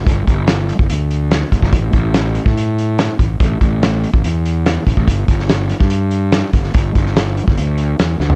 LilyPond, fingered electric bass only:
\new Staff \with { instrumentName = "Fingered electric bass" } { \clef bass \time 4/4 \key g \lydian \tempo 4 = 144 g,,8 g,,4~ g,,16 g,,16 d,4. g,,16 g,,16 | a,,8 a,,4~ a,,16 a,4.~ a,16 a,,8 | a,,8 a,,4~ a,,16 a,,16 e,4. a,,16 a,,16 | g,,8 g,,4~ g,,16 g,4.~ g,16 g,,8 |
g,,8 g,,4~ g,,16 g,,16 d,4 e,8 d,8 | }